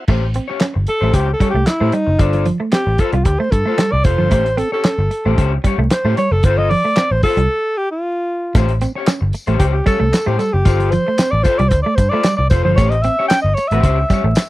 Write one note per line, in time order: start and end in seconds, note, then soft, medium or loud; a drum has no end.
0.08 0.38 A1 loud
0.08 0.19 A3 medium
0.08 0.22 C#4 medium
0.08 0.23 G4 medium
0.08 0.23 C5 medium
0.08 kick loud
0.08 crash medium
0.34 0.46 C4 medium
0.34 muted clean electric guitar stroke soft
0.34 closed hi-hat medium
0.48 0.59 C#4 soft
0.48 0.59 G4 medium
0.48 0.58 C#5 medium
0.48 muted clean electric guitar stroke soft
0.60 0.72 C#4 medium
0.60 muted clean electric guitar stroke soft
0.60 snare loud
0.60 clap loud
0.60 closed hi-hat medium
0.74 0.85 G1 medium
0.74 muted clean electric guitar stroke soft
0.87 1.16 A4 loud
0.87 muted clean electric guitar stroke soft
0.87 closed hi-hat medium
1.01 1.11 A1 medium
1.01 1.12 A3 medium
1.01 1.12 C#4 medium
1.01 1.12 G4 medium
1.01 1.13 C5 medium
1.13 1.33 C#2 loud
1.13 1.28 C#4 medium
1.13 1.28 G4 medium
1.13 1.32 G4 medium
1.13 1.27 C5 medium
1.13 muted clean electric guitar stroke soft
1.13 kick medium
1.13 closed hi-hat medium
1.28 muted clean electric guitar stroke soft
1.33 1.49 A4 medium
1.40 1.52 G3 medium
1.40 1.51 C#4 medium
1.40 1.52 G4 medium
1.40 1.52 C#5 medium
1.40 kick medium
1.40 closed hi-hat medium
1.50 1.68 G4 medium
1.50 muted clean electric guitar stroke soft
1.54 1.64 C2 medium
1.54 1.65 A3 medium
1.66 1.95 E4 medium
1.66 muted clean electric guitar stroke soft
1.66 snare loud
1.66 clap medium
1.66 closed hi-hat medium
1.80 1.90 A2 medium
1.80 1.91 A3 medium
1.80 1.91 C#4 medium
1.80 1.92 G4 medium
1.80 1.92 C5 medium
1.92 2.04 G3 medium
1.92 2.22 D#4 medium
1.92 muted clean electric guitar stroke soft
1.92 closed hi-hat medium
2.07 2.17 F#1 medium
2.07 muted clean electric guitar stroke soft
2.19 2.49 G1 loud
2.19 2.47 D4 medium
2.19 2.44 F4 medium
2.19 2.44 A4 medium
2.19 2.45 C5 medium
2.19 kick loud
2.19 closed hi-hat medium
2.33 muted clean electric guitar stroke soft
2.33 closed hi-hat medium
2.46 2.57 F3 medium
2.46 closed hi-hat medium
2.60 2.70 A3 medium
2.60 muted clean electric guitar stroke soft
2.72 2.83 C4 medium
2.72 3.01 G4 medium
2.72 muted clean electric guitar stroke soft
2.72 snare loud
2.72 clap medium
2.72 closed hi-hat medium
2.87 2.96 A1 medium
2.87 muted clean electric guitar stroke soft
2.98 3.14 F4 medium
2.98 3.14 A4 medium
2.98 3.12 A4 medium
2.98 3.12 C5 medium
2.98 muted clean electric guitar stroke soft
2.98 kick medium
2.98 closed hi-hat medium
3.13 3.25 C2 medium
3.13 3.23 G3 medium
3.13 3.26 F4 medium
3.13 muted clean electric guitar stroke soft
3.13 closed hi-hat medium
3.24 3.36 D2 loud
3.24 3.41 G4 medium
3.24 muted clean electric guitar stroke soft
3.24 kick medium
3.24 closed hi-hat medium
3.39 3.49 A3 medium
3.39 3.53 C5 medium
3.39 muted clean electric guitar stroke soft
3.51 3.62 G2 loud
3.51 3.93 A4 loud
3.51 muted clean electric guitar stroke soft
3.51 kick loud
3.51 closed hi-hat medium
3.66 3.75 A3 medium
3.66 3.79 F4 medium
3.66 3.80 A4 medium
3.66 3.80 C5 medium
3.78 3.89 G3 medium
3.78 muted clean electric guitar stroke soft
3.78 snare loud
3.78 clap loud
3.78 closed hi-hat medium
3.92 4.02 C2 medium
3.92 4.06 D5 loud
3.92 muted clean electric guitar stroke soft
4.04 4.15 F1 medium
4.04 4.16 F4 medium
4.04 4.17 A4 medium
4.04 4.59 C5 loud
4.04 4.17 C5 medium
4.04 kick loud
4.04 closed hi-hat medium
4.18 4.32 G1 medium
4.18 4.28 F3 medium
4.18 4.29 F4 soft
4.18 4.29 A4 medium
4.18 4.29 C5 medium
4.30 4.62 A1 loud
4.30 4.42 A3 medium
4.30 4.45 C#4 medium
4.30 4.46 G4 medium
4.30 4.46 C5 loud
4.30 kick loud
4.30 closed hi-hat medium
4.46 closed hi-hat medium
4.57 4.68 C4 medium
4.57 4.72 A4 medium
4.57 muted clean electric guitar stroke soft
4.57 closed hi-hat medium
4.72 4.83 C#4 soft
4.72 4.83 G4 soft
4.72 5.48 A4 medium
4.72 4.82 C#5 soft
4.72 muted clean electric guitar stroke soft
4.84 4.95 C#4 medium
4.84 muted clean electric guitar stroke soft
4.84 snare loud
4.84 clap medium
4.84 closed hi-hat medium
4.98 5.08 G1 medium
4.98 muted clean electric guitar stroke soft
5.11 muted clean electric guitar stroke soft
5.11 closed hi-hat medium
5.26 5.35 A1 medium
5.26 5.35 A3 medium
5.26 5.37 C#4 medium
5.26 5.37 G4 medium
5.26 5.38 C5 medium
5.38 5.57 C#2 medium
5.38 5.52 C#4 medium
5.38 5.52 G4 medium
5.38 5.51 C5 medium
5.38 muted clean electric guitar stroke soft
5.38 kick medium
5.38 closed hi-hat medium
5.52 muted clean electric guitar stroke soft
5.64 5.75 G3 medium
5.64 5.76 C#4 medium
5.64 5.77 G4 medium
5.64 5.77 C#5 medium
5.64 kick medium
5.64 closed hi-hat medium
5.78 5.87 C2 medium
5.78 5.88 A3 medium
5.78 muted clean electric guitar stroke soft
5.90 6.16 C5 medium
5.90 muted clean electric guitar stroke soft
5.90 snare loud
5.90 clap medium
5.90 closed hi-hat medium
6.05 6.14 A2 medium
6.05 6.15 A3 medium
6.05 6.17 C#4 medium
6.05 6.17 G4 medium
6.05 6.18 C5 medium
6.17 6.28 G3 medium
6.17 6.33 C#5 loud
6.17 muted clean electric guitar stroke soft
6.17 closed hi-hat medium
6.32 6.41 F#1 loud
6.32 6.46 A4 loud
6.32 muted clean electric guitar stroke soft
6.43 6.73 G1 loud
6.43 6.69 F4 medium
6.43 6.70 A4 loud
6.43 6.59 C5 loud
6.43 6.70 C5 medium
6.43 kick loud
6.43 closed hi-hat medium
6.58 6.71 D#5 loud
6.58 muted clean electric guitar stroke soft
6.69 6.81 F3 medium
6.69 7.13 D5 loud
6.69 open hi-hat medium
6.85 6.94 A3 medium
6.85 muted clean electric guitar stroke soft
6.96 7.08 C4 medium
6.96 muted clean electric guitar stroke soft
6.96 snare loud
6.96 clap loud
6.96 closed hi-hat medium
7.11 7.20 A1 medium
7.11 7.23 C5 loud
7.11 muted clean electric guitar stroke soft
7.23 7.38 F4 medium
7.23 7.79 A4 loud
7.23 7.38 A4 medium
7.23 7.37 C5 loud
7.23 muted clean electric guitar stroke soft
7.23 kick medium
7.23 open hi-hat medium
7.37 7.46 C2 medium
7.37 7.47 G3 medium
7.37 muted clean electric guitar stroke soft
7.37 closed hi-hat medium
7.77 7.91 G4 loud
7.91 8.66 F4 medium
8.55 8.85 A1 loud
8.55 8.66 A3 medium
8.55 8.70 C#4 medium
8.55 8.70 G4 medium
8.55 8.71 C5 loud
8.55 kick loud
8.55 closed hi-hat medium
8.55 tambourine medium
8.69 closed hi-hat medium
8.81 8.92 C4 medium
8.81 muted clean electric guitar stroke soft
8.81 closed hi-hat medium
8.81 tambourine soft
8.95 9.06 C#4 soft
8.95 9.07 G4 soft
8.95 9.06 C#5 medium
8.95 muted clean electric guitar stroke soft
9.07 9.19 C#4 medium
9.07 muted clean electric guitar stroke soft
9.07 snare loud
9.07 clap loud
9.07 closed hi-hat medium
9.07 tambourine loud
9.21 9.31 G1 medium
9.21 muted clean electric guitar stroke soft
9.33 muted clean electric guitar stroke soft
9.33 closed hi-hat medium
9.33 tambourine medium
9.47 9.57 A1 medium
9.47 9.58 A3 medium
9.47 9.59 C#4 medium
9.47 9.60 G4 medium
9.47 9.60 C5 medium
9.47 closed hi-hat soft
9.59 9.80 C#2 loud
9.59 9.75 C#4 medium
9.59 9.66 G4 medium
9.59 9.74 G4 medium
9.59 9.72 C5 medium
9.59 muted clean electric guitar stroke soft
9.59 kick medium
9.59 closed hi-hat medium
9.73 9.85 G4 medium
9.73 muted clean electric guitar stroke soft
9.86 9.97 G3 medium
9.86 9.98 C#4 medium
9.86 9.98 G4 medium
9.86 10.29 A4 loud
9.86 9.99 C#5 medium
9.86 kick loud
9.86 closed hi-hat medium
9.86 tambourine soft
10.00 10.10 C2 medium
10.00 10.10 A3 medium
10.00 muted clean electric guitar stroke soft
10.12 muted clean electric guitar stroke soft
10.12 snare loud
10.12 clap medium
10.12 closed hi-hat loud
10.12 tambourine medium
10.26 10.37 A2 medium
10.26 10.36 A3 medium
10.26 10.38 C#4 medium
10.26 10.40 G4 medium
10.26 10.38 G4 medium
10.26 10.39 C5 medium
10.38 10.50 G3 medium
10.38 10.54 A4 medium
10.38 muted clean electric guitar stroke soft
10.38 closed hi-hat medium
10.38 tambourine soft
10.53 10.63 F#1 medium
10.53 10.93 G4 medium
10.53 muted clean electric guitar stroke soft
10.65 10.96 G1 loud
10.65 10.90 F4 loud
10.65 10.91 A4 medium
10.65 10.91 C5 loud
10.65 kick loud
10.65 closed hi-hat medium
10.65 tambourine medium
10.80 muted clean electric guitar stroke soft
10.80 closed hi-hat medium
10.91 11.04 F3 medium
10.91 11.32 C5 medium
10.91 closed hi-hat medium
10.91 tambourine soft
11.07 11.17 A3 medium
11.07 muted clean electric guitar stroke medium
11.18 11.30 C4 medium
11.18 muted clean electric guitar stroke soft
11.18 snare loud
11.18 clap medium
11.18 closed hi-hat medium
11.18 tambourine loud
11.30 11.42 A1 medium
11.30 11.45 D5 medium
11.30 muted clean electric guitar stroke soft
11.43 11.59 F4 medium
11.43 11.59 A4 loud
11.43 11.59 C5 loud
11.43 11.58 C5 loud
11.43 muted clean electric guitar stroke soft
11.43 kick medium
11.43 closed hi-hat medium
11.43 tambourine medium
11.58 11.71 C2 medium
11.58 11.69 G3 medium
11.58 11.70 D5 medium
11.58 muted clean electric guitar stroke soft
11.58 closed hi-hat soft
11.69 11.82 D2 loud
11.69 11.82 C5 medium
11.69 muted clean electric guitar stroke soft
11.69 kick medium
11.69 closed hi-hat medium
11.69 tambourine soft
11.82 11.96 A3 medium
11.82 11.97 D5 medium
11.82 muted clean electric guitar stroke soft
11.95 12.08 G2 loud
11.95 12.11 C5 medium
11.95 muted clean electric guitar stroke soft
11.95 kick medium
11.95 closed hi-hat medium
11.95 tambourine soft
12.09 12.22 A4 medium
12.09 12.24 C5 medium
12.09 12.36 D5 medium
12.13 12.23 A3 medium
12.13 12.22 F4 medium
12.23 12.35 G3 medium
12.23 muted clean electric guitar stroke soft
12.23 snare loud
12.23 clap loud
12.23 closed hi-hat medium
12.23 tambourine medium
12.36 12.48 C2 medium
12.36 12.49 D5 medium
12.36 muted clean electric guitar stroke medium
12.50 12.61 F1 medium
12.50 12.62 F4 medium
12.50 12.63 A4 medium
12.50 12.63 C5 loud
12.50 12.62 C5 medium
12.50 kick loud
12.50 closed hi-hat medium
12.50 tambourine soft
12.63 12.75 G1 medium
12.63 12.75 F3 medium
12.63 12.75 F4 medium
12.63 12.75 A4 medium
12.63 12.74 C5 medium
12.63 12.73 C5 medium
12.73 12.77 C5 medium
12.73 12.91 C#5 loud
12.77 13.07 A1 loud
12.77 12.89 A3 medium
12.77 12.92 C#4 medium
12.77 12.93 G4 loud
12.77 12.93 C5 medium
12.77 kick loud
12.77 closed hi-hat medium
12.77 tambourine medium
12.90 13.04 D#5 medium
12.90 closed hi-hat medium
13.02 13.15 C4 medium
13.02 13.27 E5 loud
13.02 muted clean electric guitar stroke soft
13.02 closed hi-hat medium
13.02 tambourine soft
13.19 13.29 C#4 medium
13.19 13.29 G4 medium
13.19 13.28 C#5 medium
13.19 muted clean electric guitar stroke soft
13.28 13.42 C#4 medium
13.28 13.41 G5 loud
13.28 snare loud
13.28 clap medium
13.28 closed hi-hat medium
13.28 tambourine loud
13.42 13.54 G1 medium
13.42 13.56 D#5 loud
13.46 muted clean electric guitar stroke medium
13.54 13.69 C#5 loud
13.54 muted clean electric guitar stroke soft
13.54 closed hi-hat medium
13.54 tambourine medium
13.68 13.80 A1 medium
13.68 14.49 E5 medium
13.68 closed hi-hat medium
13.72 13.81 A3 medium
13.72 13.83 C#4 medium
13.72 13.85 G4 medium
13.72 13.85 C5 medium
13.83 14.03 C#2 loud
13.83 13.98 C#4 medium
13.83 13.99 G4 medium
13.83 13.97 C5 medium
13.83 muted clean electric guitar stroke soft
13.83 kick medium
13.83 closed hi-hat medium
13.98 muted clean electric guitar stroke soft
14.10 14.21 G3 medium
14.10 14.22 C#4 medium
14.10 14.22 G4 medium
14.10 14.23 C#5 medium
14.10 kick medium
14.10 closed hi-hat medium
14.10 tambourine soft
14.24 14.33 A1 loud
14.24 14.34 A3 medium
14.24 muted clean electric guitar stroke soft
14.35 muted clean electric guitar stroke soft
14.35 snare loud
14.35 clap medium
14.35 closed hi-hat loud
14.35 tambourine medium